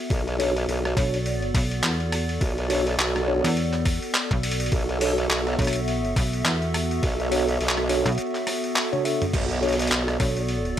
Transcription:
Already playing: ambient pad B3 F#4 A4
0.10 wobble bass B1, ambient pad D5, kick, open hi-hat
0.28 open hi-hat
0.39 tine electric piano D4 F#4 A4 C#5, open hi-hat
0.57 open hi-hat
0.68 wobble bass B1, open hi-hat
0.85 cross-stick, open hi-hat
0.97 fm bass B1, tine electric piano D4 F#4 A4 C#5, kick, open hi-hat
1.14 open hi-hat
1.26 open hi-hat
1.42 open hi-hat
1.55 fm bass B1, kick, open hi-hat
1.71 open hi-hat
1.83 fm bass E2, clap, open hi-hat
2.00 open hi-hat
2.12 cross-stick, open hi-hat
2.29 open hi-hat
2.41 wobble bass B1, kick, open hi-hat
2.58 open hi-hat
2.70 tine electric piano D4 F#4 A4 C#5, open hi-hat
2.87 open hi-hat
2.99 wobble bass B1, clap, open hi-hat
3.16 cross-stick, open hi-hat
3.28 tine electric piano D4 F#4 A4 C#5
3.44 fm bass E2, open hi-hat
3.57 open hi-hat
3.73 clap, open hi-hat
3.85 kick, cross-stick, open hi-hat
4.02 open hi-hat
4.14 clap, open hi-hat
4.31 fm bass B1, kick, open hi-hat
4.43 open hi-hat
4.51 open hi-hat
4.60 open hi-hat
4.66 open hi-hat
4.72 wobble bass B1, ambient pad E5, kick, open hi-hat
4.89 open hi-hat
5.01 tine electric piano D4 F#4 A4 C#5, open hi-hat
5.18 open hi-hat
5.30 wobble bass B1, clap, open hi-hat
5.47 cross-stick, open hi-hat
5.53 cross-stick
5.59 fm bass B1, tine electric piano D4 F#4 A4 C#5, kick, cross-stick, open hi-hat
5.62 open hi-hat
5.64 cross-stick, open hi-hat
5.67 open hi-hat
5.73 open hi-hat
5.76 open hi-hat
5.88 open hi-hat
6.05 open hi-hat
6.16 fm bass B1, kick, open hi-hat
6.33 open hi-hat
6.45 fm bass E2, clap, open hi-hat
6.62 open hi-hat
6.74 cross-stick, open hi-hat
6.91 open hi-hat
7.03 wobble bass B1, kick, open hi-hat
7.20 open hi-hat
7.32 tine electric piano D4 F#4 A4 C#5, open hi-hat
7.48 open hi-hat
7.61 wobble bass B1, open hi-hat
7.69 clap
7.77 cross-stick, open hi-hat
7.89 tine electric piano D4 F#4 A4 C#5, open hi-hat
8.06 fm bass B1, open hi-hat
8.09 open hi-hat
8.12 open hi-hat
8.15 open hi-hat
8.18 open hi-hat
8.26 open hi-hat
8.31 open hi-hat
8.35 clap, open hi-hat
8.47 cross-stick, open hi-hat
8.64 open hi-hat
8.76 clap, open hi-hat
8.92 tine electric piano D4 F#4 A4 C#5, open hi-hat, high tom
9.05 tine electric piano D4 F#4 A4 E5, open hi-hat
9.22 mid tom, open hi-hat
9.33 wobble bass B1, ambient pad D5, kick, open hi-hat, crash
9.51 open hi-hat
9.62 tine electric piano D4 F#4 A4 C#5, open hi-hat
9.69 open hi-hat
9.73 open hi-hat
9.79 open hi-hat
9.82 open hi-hat
9.87 wobble bass B1, open hi-hat
9.92 clap, open hi-hat
10.08 cross-stick, open hi-hat
10.20 fm bass B1, tine electric piano D4 F#4 A4 C#5, kick, open hi-hat
10.37 open hi-hat
10.49 open hi-hat
10.65 open hi-hat

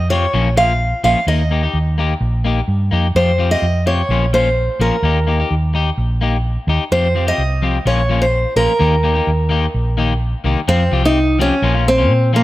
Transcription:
Already playing: fingered electric bass F2
0.10 clean electric guitar F3 C4 F4 G4, steel-string acoustic guitar C#5
0.33 fingered electric bass A#1, clean electric guitar F3 A#3 C#4, muted clean electric guitar stroke
0.57 clean electric guitar F3 A#3 F4, steel-string acoustic guitar F5
1.04 fingered electric bass A#1, clean electric guitar F3 A#3 C#4 F4, steel-string acoustic guitar F5
1.27 fingered electric bass D#2, clean electric guitar A#3 D#4, steel-string acoustic guitar D#5, muted clean electric guitar stroke
1.51 clean electric guitar A#3 D#4 G4
1.63 clean electric guitar D#4 G4
1.73 fingered electric bass D#2
1.98 clean electric guitar A#3 D#4 G4
2.21 fingered electric bass A#1
2.45 clean electric guitar A#3 D#4 G4
2.68 fingered electric bass G2
2.91 fingered electric bass F2, clean electric guitar A#3 D#4 G4
3.15 fingered electric bass F2, clean electric guitar F3 F4 G4, steel-string acoustic guitar C5, muted clean electric guitar stroke
3.38 clean electric guitar F3 C4 F4 G4
3.51 clean electric guitar C4 F4 G4, steel-string acoustic guitar D#5
3.62 fingered electric bass F2
3.86 clean electric guitar C4 F4 G4, steel-string acoustic guitar C#5
4.09 fingered electric bass A#1, clean electric guitar F3 A#3 C#4 F4
4.33 clean electric guitar F3 A#3 C#4 F4, steel-string acoustic guitar C5
4.79 fingered electric bass A#1, clean electric guitar F3 A#3 C#4 F4, steel-string acoustic guitar A#4
5.03 fingered electric bass D#2, clean electric guitar A#3 D#4 G4
5.27 clean electric guitar A#3 D#4 G4
5.40 clean electric guitar D#4 G4
5.51 fingered electric bass D#2
5.74 clean electric guitar D#4 G4, muted clean electric guitar stroke
5.97 fingered electric bass A#1
6.21 clean electric guitar A#3 D#4 G4
6.67 fingered electric bass D#2, clean electric guitar D#4 G4, muted clean electric guitar stroke
6.92 fingered electric bass F2, clean electric guitar F3 C4 F4 G4, steel-string acoustic guitar C5
7.15 clean electric guitar F3 C4 F4 G4
7.27 clean electric guitar C4 F4 G4, steel-string acoustic guitar D#5
7.38 fingered electric bass C2
7.62 clean electric guitar F3 C4 F4 G4
7.85 fingered electric bass A#1, clean electric guitar F3 A#3 C#4 F4, steel-string acoustic guitar C#5
8.09 clean electric guitar F3 A#3 C#4 F4
8.22 steel-string acoustic guitar C5
8.56 fingered electric bass A#1, clean electric guitar F3 A#3 C#4 F4, steel-string acoustic guitar A#4
8.79 fingered electric bass D#2, clean electric guitar D#3 A#3 D#4 G4
9.03 clean electric guitar D#3 A#3 D#4 G4
9.15 clean electric guitar A#3 D#4 G4
9.27 fingered electric bass D#2
9.49 clean electric guitar D#3 A#3 D#4 G4
9.74 fingered electric bass A#1
9.97 clean electric guitar D#3 A#3 D#4 G4
10.44 fingered electric bass C2, clean electric guitar D#3 A#3 D#4 G4
10.68 fingered electric bass F2, clean electric guitar F3 C4 F4, steel-string acoustic guitar C4, muted clean electric guitar stroke
10.91 fingered electric bass C2, clean electric guitar F3 F4 G4
11.04 clean electric guitar C4 G4, steel-string acoustic guitar D#4, muted clean electric guitar stroke
11.39 clean electric guitar F3 C4 F4 G4, steel-string acoustic guitar C#4
11.62 fingered electric bass A#1, clean electric guitar F3 A#3 C#4 F4
11.75 clean electric guitar A#3 C#4 F4
11.88 steel-string acoustic guitar C4
11.98 clean electric guitar A#3 C#4 F4
12.09 fingered electric bass A#2
12.33 clean electric guitar F3 A#3 C#4 F4, steel-string acoustic guitar A#3

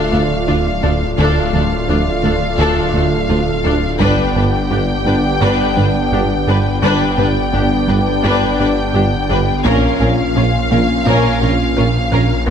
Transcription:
Already playing: detuned saw bass D1, analog synth pad A3 F4 A4 D5, french horn section A3 F4, violin section F5
0.13 tuba D2, cello section D2, double bass section D2, analog synth bass D3, synth arpeggio sound A3, viola section D4, violin section A4
0.47 double bass section D2, tuba D2, cello section D2, analog synth bass D2, viola section D4, synth arpeggio sound D4, violin section F4
0.82 tuba D2, cello section D2, double bass section D2, analog synth bass D2, synth arpeggio sound D4, viola section D4, violin section A4
1.17 detuned saw bass D1, analog synth bass D2, tuba D2, cello section D2, double bass section D2, synth arpeggio sound D3, analog synth pad A3 F4 A4 D5, french horn section A3 F4, viola section D4, violin section A4 F5
1.53 analog synth bass D2, tuba D2, cello section D2, double bass section D2, synth arpeggio sound F3, viola section D4, violin section A4
1.88 analog synth bass D2, tuba D2, cello section D2, double bass section D2, synth arpeggio sound F3, viola section D4, violin section F4
2.23 double bass section D2, tuba D2, cello section D2, analog synth bass D3, synth arpeggio sound A3, viola section D4, violin section A4
2.58 analog synth bass D2, tuba D2, double bass section D2, cello section D2, synth arpeggio sound D3, viola section D4, violin section A4
2.93 double bass section D2, cello section D2, tuba D2, analog synth bass D3, synth arpeggio sound A3, viola section D4, violin section A4
3.29 analog synth bass D2, double bass section D2, cello section D2, tuba D2, synth arpeggio sound D4, viola section D4, violin section F4
3.64 analog synth bass D2, double bass section D2, cello section D2, tuba D2, synth arpeggio sound D4, viola section D4, violin section A4
4.00 tuba G1, double bass section G1, detuned saw bass G1, analog synth bass G2, cello section G2, synth arpeggio sound G3, french horn section B3 D4, analog synth pad B3 D4 G4 D5, viola section D4, violin section B4 G5, taiko
4.36 double bass section G1, tuba G1, analog synth bass G2, cello section G2, synth arpeggio sound B3, viola section D4, violin section B4
4.71 double bass section G1, tuba G1, analog synth bass G2, cello section G2, synth arpeggio sound B3, viola section D4, violin section G4
5.06 double bass section G1, tuba G1, cello section G2, analog synth bass G3, synth arpeggio sound D4, viola section D4, violin section B4
5.41 double bass section G1, tuba G1, analog synth bass G2, cello section G2, synth arpeggio sound G3, viola section D4, violin section B4
5.76 tuba G1, double bass section G1, cello section G2, analog synth bass G3, synth arpeggio sound D4, viola section D4, violin section B4
6.12 tuba G1, double bass section G1, analog synth bass G2, cello section G2, viola section D4, violin section G4, synth arpeggio sound G4
6.47 tuba G1, double bass section G1, analog synth bass G2, cello section G2, viola section D4, synth arpeggio sound G4, violin section B4
6.82 detuned saw bass G1, double bass section G1, tuba G1, analog synth bass G2, cello section G2, synth arpeggio sound G3, analog synth pad B3 D4 G4 D5, french horn section B3 D4, viola section D4, violin section B4 G5
7.18 double bass section G1, tuba G1, analog synth bass G2, cello section G2, synth arpeggio sound B3, viola section D4, violin section B4
7.53 tuba G1, double bass section G1, analog synth bass G2, cello section G2, synth arpeggio sound B3, viola section D4, violin section G4
7.88 double bass section G1, tuba G1, cello section G2, analog synth bass G3, synth arpeggio sound D4, viola section D4, violin section B4
8.24 tuba G1, double bass section G1, cello section G2, analog synth bass G2, synth arpeggio sound G3, viola section D4, violin section B4
8.59 tuba G1, double bass section G1, cello section G2, analog synth bass G3, synth arpeggio sound D4, viola section D4, violin section B4
8.94 tuba G1, double bass section G1, analog synth bass G2, cello section G2, viola section D4, synth arpeggio sound G4, violin section G4
9.29 double bass section G1, tuba G1, cello section G2, analog synth bass G2, viola section D4, synth arpeggio sound G4, violin section B4
9.65 tuba A#1, double bass section A#1, detuned saw bass A#1, cello section A#2, analog synth bass A#2, synth arpeggio sound A#3, french horn section A#3 C#4, analog synth pad A#3 C#4 F4 F5, viola section C#4, violin section A#4 F5, taiko
10.00 tuba A#1, double bass section A#1, analog synth bass A#2, cello section A#2, viola section C#4, synth arpeggio sound C#4, violin section A#4
10.36 tuba A#1, double bass section A#1, cello section A#2, analog synth bass A#2, synth arpeggio sound C#4, viola section C#4, violin section F4
10.71 tuba A#1, double bass section A#1, cello section A#2, analog synth bass A#3, viola section C#4, synth arpeggio sound F4, violin section A#4
11.06 tuba A#1, double bass section A#1, cello section A#2, analog synth bass A#2, french horn section A#3 C#4, synth arpeggio sound A#3, viola section C#4, violin section A#4
11.41 tuba A#1, double bass section A#1, cello section A#2, analog synth bass A#3, viola section C#4, synth arpeggio sound F4, violin section A#4
11.77 tuba A#1, double bass section A#1, analog synth bass A#2, cello section A#2, viola section C#4, violin section F4, synth arpeggio sound A#4
12.12 tuba A#1, double bass section A#1, cello section A#2, analog synth bass A#2, viola section C#4, synth arpeggio sound A#4, violin section A#4
12.47 cello section A#2, synth arpeggio sound A#3

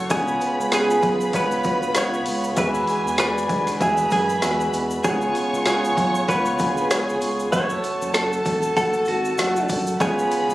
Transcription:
Already playing: grand piano A3 F#4 B4 E5 F#5
0.10 analog synth bass C#2, grand piano C#3 B3 F4 C#5, clean electric guitar G#4, violin section B4 B5, kick, open hi-hat, shaker
0.28 shaker
0.41 open hi-hat, shaker
0.59 analog synth bass C#2, shaker
0.71 analog synth bass C#2, grand piano B3 F4 G#4, clean electric guitar G#4, snare, open hi-hat, shaker
0.90 shaker
1.02 analog synth bass B1, kick, open hi-hat, shaker
1.21 shaker
1.33 analog synth bass C#2, grand piano B3 F4 C#5, clean electric guitar B4, kick, open hi-hat, shaker
1.51 shaker
1.64 analog synth bass D2, kick, open hi-hat, shaker
1.83 shaker
1.94 analog synth bass C#2, grand piano B3 F4 C#5, clean electric guitar C#5, snare, open hi-hat, shaker
2.14 shaker
2.26 analog synth bass C#2, open hi-hat, shaker
2.44 shaker
2.56 analog synth bass E2, grand piano E3 G#3 F#4 E5, violin section G#4 G#5, clean electric guitar B4, kick, open hi-hat, shaker
2.74 shaker
2.87 open hi-hat, shaker
3.06 analog synth bass E2, shaker
3.18 analog synth bass E2, grand piano G#3 F#4 D5, clean electric guitar B4, snare, open hi-hat, shaker
3.38 shaker
3.49 analog synth bass D2, kick, open hi-hat, shaker
3.67 snare, open hi-hat, shaker
3.81 analog synth bass E2, grand piano G#3 F#4 E5, clean electric guitar G#4, violin section B4 B5, kick, open hi-hat, shaker
3.97 shaker
4.10 analog synth bass F#2, clean electric guitar G#4, kick, open hi-hat, shaker
4.29 shaker
4.42 analog synth bass E2, grand piano G#3 F#4 E5, snare, open hi-hat, shaker
4.61 shaker
4.73 analog synth bass E2, open hi-hat, shaker
4.91 shaker
5.04 analog synth bass C#2, grand piano C#3 B3 E4 C#5, clean electric guitar G#4, violin section C#5 C#6, kick, open hi-hat, shaker
5.11 grand piano F4
5.21 shaker
5.35 open hi-hat, shaker
5.53 analog synth bass C#2, shaker
5.65 analog synth bass C#2, grand piano B3 F4 C#5, clean electric guitar G#4, snare, open hi-hat, shaker
5.85 shaker
5.97 analog synth bass B1, kick, open hi-hat, shaker
6.15 shaker
6.28 analog synth bass C#2, grand piano B3 F4 C#5, clean electric guitar B4, kick, open hi-hat, shaker
6.46 shaker
6.59 analog synth bass D2, violin section G#4 G#5, kick, open hi-hat, shaker
6.77 shaker
6.90 analog synth bass C#2, grand piano B3 F4 G#4, clean electric guitar C#5, snare, open hi-hat, shaker
7.09 shaker
7.21 analog synth bass C#2, open hi-hat, shaker
7.40 shaker
7.52 analog synth bass F#1, grand piano A3 F#4 E5, violin section A4 A5, clean electric guitar C#5, kick, open hi-hat, shaker
7.70 shaker
7.84 open hi-hat, shaker
8.01 analog synth bass F#1, shaker
8.14 analog synth bass F#1, grand piano A3 F#4 A4, clean electric guitar A4, snare, open hi-hat, shaker
8.33 shaker
8.45 analog synth bass E1, kick, open hi-hat, shaker
8.63 shaker
8.76 analog synth bass F#1, grand piano A3 F#4 F#5, clean electric guitar A4, kick, open hi-hat, shaker
8.93 shaker
9.05 analog synth bass G#1, clean electric guitar F#4, open hi-hat, shaker
9.25 shaker
9.38 analog synth bass F#1, grand piano A3 F#4 F#5, snare, open hi-hat, shaker
9.56 shaker
9.69 analog synth bass F#1, kick, open hi-hat, shaker
9.87 shaker
10.00 analog synth bass C#2, grand piano C#3 B3 F4 C#5, clean electric guitar G#4, violin section B4 B5, kick, open hi-hat, shaker
10.19 shaker
10.31 open hi-hat, shaker
10.48 analog synth bass C#2, shaker

